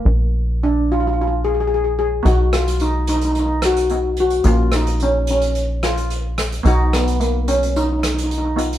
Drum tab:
HH |----------------|x-xxx-xxx-xxx-xx|x-xxx-xxx-xxx-xx|x-xxx-xxx-xxx-xx|
SD |----------------|--r-------r-----|--r-------r---r-|--r-------r-----|